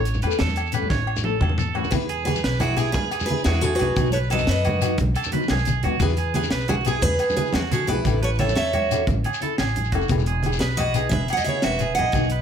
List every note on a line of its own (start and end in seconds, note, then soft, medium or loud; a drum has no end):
0.00 0.19 A1 loud
0.00 0.21 C#5 medium
0.05 closed hi-hat soft
0.05 shekere soft
0.14 low conga medium
0.14 shekere soft
0.22 0.38 E2 medium
0.22 0.33 E3 medium
0.22 0.34 A3 medium
0.22 0.39 B4 medium
0.22 closed hi-hat soft
0.22 low agogo medium
0.22 shekere soft
0.27 0.35 C#4 medium
0.27 0.35 A4 medium
0.31 shekere medium
0.39 0.87 E2 medium
0.39 0.71 A4 medium
0.39 snare medium
0.39 closed hi-hat medium
0.39 high conga medium
0.48 low conga medium
0.48 shekere soft
0.56 closed hi-hat soft
0.56 low agogo medium
0.56 shekere soft
0.66 shekere soft
0.72 0.84 E3 medium
0.72 0.84 A3 medium
0.72 0.84 C#4 medium
0.72 0.90 B4 medium
0.72 closed hi-hat soft
0.72 low agogo medium
0.72 shekere medium
0.76 0.85 A4 medium
0.83 low conga medium
0.90 1.37 A1 medium
0.90 1.23 C#5 medium
0.90 kick medium
0.90 snare soft
0.90 high conga medium
0.90 shekere soft
1.00 low conga soft
1.07 low agogo medium
1.16 low conga medium
1.16 shekere medium
1.23 1.34 E3 medium
1.23 1.35 A3 medium
1.23 1.35 C#4 medium
1.23 1.57 A4 medium
1.23 1.36 A4 medium
1.23 high tom medium
1.23 low conga soft
1.41 1.88 E2 loud
1.41 mid tom medium
1.41 high conga medium
1.41 low agogo medium
1.49 low conga medium
1.58 1.75 A4 medium
1.58 mid tom medium
1.58 shekere medium
1.68 low conga soft
1.74 1.85 E3 medium
1.74 1.86 A3 medium
1.74 1.86 C#4 medium
1.74 1.92 F#4 medium
1.74 1.87 A4 medium
1.74 low conga soft
1.74 low agogo medium
1.84 low conga medium
1.84 shekere soft
1.91 2.39 E2 medium
1.91 2.02 B3 medium
1.91 2.03 E4 medium
1.91 2.23 G#4 medium
1.91 2.03 G#4 medium
1.91 2.24 B4 medium
1.91 kick medium
1.91 closed hi-hat medium
1.91 high conga medium
1.91 low agogo medium
1.91 shekere medium
2.00 shekere soft
2.09 2.42 G#4 medium
2.09 closed hi-hat soft
2.09 low conga soft
2.19 low conga soft
2.25 2.36 B3 medium
2.25 2.37 E4 medium
2.25 2.58 G#4 medium
2.25 2.38 G#4 medium
2.25 2.60 B4 medium
2.25 closed hi-hat soft
2.25 high conga medium
2.25 low agogo medium
2.25 shekere soft
2.35 low conga medium
2.35 shekere medium
2.44 2.91 B1 medium
2.44 2.60 B4 medium
2.44 snare medium
2.44 closed hi-hat medium
2.53 shekere soft
2.60 2.76 E4 medium
2.60 2.77 F#4 medium
2.60 2.75 G#4 medium
2.60 closed hi-hat soft
2.60 high conga medium
2.60 low conga medium
2.60 low agogo medium
2.60 shekere soft
2.77 2.88 B3 soft
2.77 2.92 E4 medium
2.77 2.89 E4 medium
2.77 2.92 G#4 medium
2.77 3.10 G#4 medium
2.77 closed hi-hat soft
2.77 low conga soft
2.77 low agogo medium
2.77 shekere medium
2.81 2.90 G#4 medium
2.89 3.25 B4 medium
2.89 low conga soft
2.93 3.10 E2 medium
2.93 3.25 G#4 medium
2.93 kick medium
2.93 closed hi-hat medium
2.93 high conga medium
2.93 low conga medium
2.93 shekere soft
3.11 3.45 G#4 medium
3.11 closed hi-hat soft
3.11 low conga soft
3.11 low agogo medium
3.11 shekere soft
3.20 low conga medium
3.20 shekere medium
3.26 3.43 G#4 medium
3.26 3.43 B4 medium
3.26 closed hi-hat soft
3.30 3.40 B3 medium
3.30 3.40 E4 medium
3.30 3.41 G#4 medium
3.30 high conga medium
3.38 low conga soft
3.38 shekere soft
3.44 3.77 E2 medium
3.44 3.61 E4 medium
3.44 3.62 F#4 medium
3.44 3.61 G#4 medium
3.44 snare medium
3.44 closed hi-hat medium
3.44 low conga medium
3.44 low agogo medium
3.54 shekere soft
3.61 3.74 F#4 medium
3.61 3.76 A4 medium
3.61 closed hi-hat soft
3.61 high conga medium
3.61 shekere medium
3.65 3.80 G#4 medium
3.73 4.09 F#4 medium
3.73 4.12 B4 medium
3.73 low conga soft
3.79 3.95 B1 medium
3.79 3.90 B3 medium
3.79 3.91 E4 medium
3.79 4.13 G#4 medium
3.79 closed hi-hat soft
3.79 low conga medium
3.79 low agogo medium
3.83 3.92 G#4 medium
3.96 4.44 B1 loud
3.96 4.08 F#3 medium
3.96 4.08 B3 medium
3.96 4.09 D#4 medium
3.96 kick medium
3.96 closed hi-hat medium
3.96 high conga medium
3.96 low agogo medium
3.96 shekere medium
4.06 low conga medium
4.06 shekere soft
4.12 4.17 A4 medium
4.12 4.30 B4 medium
4.12 4.18 C#5 medium
4.12 closed hi-hat medium
4.17 low conga soft
4.24 low conga soft
4.30 4.42 F#3 medium
4.30 4.63 A4 medium
4.30 4.46 B4 medium
4.30 4.49 D#5 medium
4.30 closed hi-hat soft
4.30 high conga medium
4.30 low agogo medium
4.30 shekere soft
4.34 4.43 B3 medium
4.34 4.44 D#4 medium
4.38 low conga medium
4.38 shekere medium
4.47 4.95 F#2 medium
4.47 4.96 B4 medium
4.47 4.97 D#5 medium
4.47 snare medium
4.47 closed hi-hat medium
4.55 shekere soft
4.64 4.97 F#4 medium
4.64 closed hi-hat soft
4.64 high conga medium
4.64 low conga medium
4.64 low agogo medium
4.64 shekere soft
4.81 4.93 F#3 medium
4.81 closed hi-hat medium
4.81 low conga soft
4.81 low agogo medium
4.81 shekere medium
4.86 4.94 D#4 medium
4.92 low conga soft
4.98 5.14 B1 medium
4.98 kick medium
4.98 closed hi-hat medium
4.98 high conga medium
4.98 low conga medium
4.98 shekere soft
5.15 5.32 A4 medium
5.15 closed hi-hat soft
5.15 low conga soft
5.15 low agogo medium
5.15 shekere soft
5.23 low conga medium
5.23 shekere medium
5.32 5.43 F#3 medium
5.32 5.44 B3 medium
5.32 5.45 D#4 medium
5.32 5.49 B4 medium
5.32 closed hi-hat medium
5.32 high conga medium
5.42 low conga soft
5.42 shekere soft
5.48 5.81 B1 medium
5.48 5.82 G#4 medium
5.48 snare medium
5.48 closed hi-hat medium
5.48 low conga medium
5.48 low agogo medium
5.58 shekere soft
5.65 closed hi-hat soft
5.65 high conga medium
5.65 shekere medium
5.75 low conga soft
5.83 5.99 D#2 medium
5.83 5.94 F#3 medium
5.83 5.95 B3 medium
5.83 5.96 D#4 medium
5.83 6.00 F#4 medium
5.83 closed hi-hat soft
5.83 low conga medium
5.83 low agogo medium
6.00 6.48 E2 loud
6.00 6.12 B3 medium
6.00 6.12 E4 medium
6.00 6.33 G#4 medium
6.00 6.34 B4 medium
6.00 kick medium
6.00 closed hi-hat medium
6.00 high conga medium
6.00 low agogo medium
6.00 shekere loud
6.04 6.13 G#4 medium
6.09 low conga medium
6.09 shekere soft
6.17 6.51 G#4 medium
6.17 closed hi-hat soft
6.17 low conga soft
6.26 low conga soft
6.34 6.45 B3 medium
6.34 6.46 E4 medium
6.34 6.67 G#4 medium
6.34 6.47 G#4 medium
6.34 6.69 B4 medium
6.34 closed hi-hat soft
6.34 high conga medium
6.34 low agogo medium
6.34 shekere soft
6.43 low conga medium
6.43 shekere medium
6.51 6.99 B1 medium
6.51 6.68 B4 medium
6.51 snare medium
6.51 closed hi-hat medium
6.60 shekere soft
6.68 6.74 E4 soft
6.68 6.85 F#4 medium
6.68 6.74 G#4 medium
6.68 closed hi-hat soft
6.68 high conga medium
6.68 low conga medium
6.68 low agogo medium
6.68 shekere soft
6.85 6.96 B3 medium
6.85 6.97 E4 medium
6.85 7.03 E4 soft
6.85 7.19 G#4 medium
6.85 7.02 G#4 medium
6.85 6.97 G#4 medium
6.85 closed hi-hat soft
6.85 low conga soft
6.85 low agogo medium
6.85 shekere medium
6.94 low conga soft
7.02 7.18 E2 medium
7.02 7.35 G#4 medium
7.02 7.36 B4 medium
7.02 kick medium
7.02 closed hi-hat medium
7.02 high conga medium
7.02 low conga medium
7.02 shekere soft
7.19 7.53 G#4 medium
7.19 closed hi-hat soft
7.19 low conga soft
7.19 low agogo medium
7.19 shekere soft
7.29 low conga medium
7.29 shekere medium
7.36 7.47 B3 medium
7.36 7.48 E4 medium
7.36 7.53 G#4 medium
7.36 7.55 B4 medium
7.36 closed hi-hat medium
7.36 high conga medium
7.40 7.49 G#4 medium
7.45 low conga soft
7.45 shekere soft
7.53 7.86 E2 medium
7.53 7.61 E4 medium
7.53 7.71 F#4 medium
7.53 7.60 G#4 medium
7.53 snare medium
7.53 closed hi-hat medium
7.53 low conga medium
7.53 low agogo medium
7.71 7.88 F#4 medium
7.71 7.88 G#4 medium
7.71 7.88 A4 medium
7.71 closed hi-hat medium
7.71 high conga medium
7.71 shekere medium
7.80 low conga soft
7.87 8.04 B1 medium
7.87 7.99 B3 medium
7.87 8.19 E4 medium
7.87 8.00 E4 medium
7.87 8.00 G#4 medium
7.87 8.20 B4 medium
7.87 muted clean electric guitar stroke medium
7.87 closed hi-hat soft
7.87 low conga medium
7.87 low agogo medium
8.05 8.52 A1 loud
8.05 8.16 C#4 medium
8.05 8.17 E4 medium
8.05 8.17 A4 medium
8.05 kick medium
8.05 closed hi-hat medium
8.05 high conga medium
8.05 low agogo medium
8.05 shekere medium
8.14 low conga medium
8.22 8.28 A4 medium
8.22 8.39 B4 medium
8.22 8.29 C#5 medium
8.22 closed hi-hat soft
8.39 8.50 C#4 medium
8.39 8.51 E4 medium
8.39 8.72 A4 medium
8.39 8.51 A4 medium
8.39 8.54 C#5 medium
8.39 8.56 E5 medium
8.39 closed hi-hat soft
8.39 high conga medium
8.39 low agogo medium
8.49 low conga medium
8.49 shekere medium
8.55 9.03 C#5 medium
8.55 9.04 E5 medium
8.55 snare medium
8.55 closed hi-hat medium
8.65 low conga soft
8.65 shekere soft
8.73 9.06 F#4 medium
8.73 closed hi-hat soft
8.73 low conga medium
8.73 low agogo medium
8.90 9.01 C#4 medium
8.90 9.02 E4 medium
8.90 9.02 A4 medium
8.90 closed hi-hat soft
8.90 low agogo medium
8.90 shekere medium
9.07 9.23 A1 medium
9.07 kick medium
9.07 closed hi-hat medium
9.07 high conga medium
9.07 low conga medium
9.07 shekere soft
9.24 9.41 G#4 medium
9.24 closed hi-hat soft
9.24 high conga medium
9.24 low agogo medium
9.34 shekere medium
9.41 9.51 C#4 medium
9.41 9.52 E4 medium
9.41 9.58 A4 medium
9.41 9.52 A4 medium
9.41 closed hi-hat soft
9.41 high conga medium
9.41 shekere soft
9.58 9.90 A1 medium
9.58 9.91 G#4 medium
9.58 snare medium
9.58 closed hi-hat medium
9.58 high conga medium
9.58 low agogo medium
9.58 shekere soft
9.67 shekere soft
9.76 closed hi-hat soft
9.76 low conga medium
9.85 shekere soft
9.92 10.08 F1 medium
9.92 10.03 C#4 medium
9.92 10.04 E4 medium
9.92 10.09 F#4 medium
9.92 10.04 A4 medium
9.92 kick medium
9.92 closed hi-hat soft
9.92 low conga medium
9.92 low agogo medium
10.01 shekere soft
10.09 10.57 E1 loud
10.09 10.20 B3 medium
10.09 10.20 E4 medium
10.09 10.21 G#4 medium
10.09 kick medium
10.09 closed hi-hat medium
10.09 high conga medium
10.09 low agogo medium
10.09 shekere medium
10.18 low conga medium
10.18 shekere soft
10.26 10.59 G#4 medium
10.26 closed hi-hat soft
10.26 low conga soft
10.36 low conga soft
10.43 10.55 E4 medium
10.43 10.55 G#4 medium
10.43 muted nylon-string guitar stroke medium
10.43 closed hi-hat soft
10.43 high conga medium
10.43 low agogo medium
10.43 shekere soft
10.52 low conga medium
10.52 shekere medium
10.59 11.08 B1 medium
10.59 10.65 G#4 medium
10.59 10.64 B4 medium
10.59 10.77 B4 medium
10.59 snare medium
10.59 closed hi-hat medium
10.70 shekere soft
10.77 10.94 F#4 medium
10.77 11.10 B4 medium
10.77 11.09 D#5 medium
10.77 closed hi-hat soft
10.77 low conga medium
10.77 low agogo medium
10.77 shekere soft
10.94 11.05 B3 medium
10.94 11.06 E4 medium
10.94 11.27 G#4 medium
10.94 11.06 G#4 medium
10.94 closed hi-hat medium
10.94 low conga soft
10.94 low agogo medium
10.94 shekere medium
11.04 low conga soft
11.09 11.27 E1 medium
11.09 11.36 B4 medium
11.09 11.32 E5 medium
11.09 kick medium
11.09 closed hi-hat medium
11.09 high conga medium
11.09 low conga medium
11.09 shekere soft
11.28 11.62 G#4 medium
11.28 closed hi-hat soft
11.28 low conga soft
11.28 low agogo medium
11.28 shekere soft
11.33 11.44 F#5 medium
11.37 11.45 D#5 medium
11.37 low conga medium
11.37 shekere medium
11.44 11.57 B3 medium
11.44 11.62 E5 medium
11.44 closed hi-hat medium
11.44 high conga medium
11.49 11.57 E4 medium
11.49 11.58 G#4 medium
11.49 11.63 C#5 medium
11.54 low conga soft
11.54 shekere soft
11.62 11.95 E1 medium
11.62 11.80 F#4 medium
11.62 11.96 B4 medium
11.62 11.94 E5 medium
11.62 snare medium
11.62 closed hi-hat medium
11.62 low conga medium
11.62 low agogo medium
11.72 shekere soft
11.79 11.96 G#4 medium
11.79 closed hi-hat soft
11.79 high conga medium
11.79 shekere medium
11.89 low conga soft
11.95 12.13 A#1 medium
11.95 12.07 B3 medium
11.95 12.29 G#4 medium
11.95 12.42 F#5 medium
11.95 closed hi-hat soft
11.99 12.08 E4 medium
11.99 12.42 D#5 medium
11.99 muted nylon-string guitar stroke medium
11.99 low conga medium
11.99 low agogo medium
12.12 12.42 B1 loud
12.12 12.24 F#3 medium
12.12 12.25 B3 medium
12.12 12.25 D#4 medium
12.12 kick medium
12.12 closed hi-hat medium
12.12 high conga medium
12.12 low agogo medium
12.12 shekere medium
12.23 low conga soft
12.23 shekere soft
12.30 12.42 B4 medium
12.30 closed hi-hat soft
12.30 low conga soft